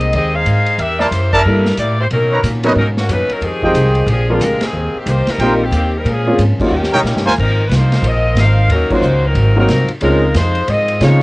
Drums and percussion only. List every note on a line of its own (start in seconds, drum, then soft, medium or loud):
0.01 ride soft
0.13 ride medium
0.46 hi-hat pedal soft
0.46 ride medium
0.66 ride soft
0.79 ride medium
1.00 snare soft
1.12 hi-hat pedal medium
1.12 ride medium
1.33 kick medium
1.33 crash medium
1.66 snare medium
1.77 hi-hat pedal medium
1.77 ride medium
2.11 ride medium
2.44 hi-hat pedal medium
2.44 ride medium
2.63 ride medium
2.97 snare medium
3.09 hi-hat pedal medium
3.09 ride medium
3.29 ride soft
3.42 ride medium
3.63 kick soft
3.75 hi-hat pedal medium
3.75 ride medium
3.95 ride soft
4.08 ride medium
4.41 hi-hat pedal medium
4.41 ride medium
4.61 snare medium
4.61 ride medium
5.07 hi-hat pedal medium
5.07 ride medium
5.27 snare medium
5.27 ride soft
5.40 ride medium
5.72 hi-hat pedal medium
5.72 ride medium
6.06 ride medium
6.39 hi-hat pedal medium
6.39 ride medium
6.60 kick medium
6.60 crash medium
6.83 snare medium
6.95 mid tom medium
7.05 snare medium
7.05 hi-hat pedal medium
7.17 snare medium
7.28 snare medium
7.38 kick medium
7.38 crash medium
7.71 snare medium
7.71 hi-hat pedal medium
7.71 ride medium
7.92 snare medium
7.92 ride soft
8.04 ride medium
8.36 snare medium
8.36 hi-hat pedal medium
8.36 ride medium
8.70 ride medium
8.90 kick medium
8.90 crash medium
9.02 hi-hat pedal medium
9.35 ride medium
9.69 snare medium
9.69 hi-hat pedal medium
9.69 ride medium
9.88 ride soft
10.01 ride medium
10.35 snare medium
10.35 hi-hat pedal medium
10.35 ride medium
10.55 ride soft
10.68 ride medium
10.88 ride soft
11.01 snare medium
11.01 hi-hat pedal medium
11.01 ride medium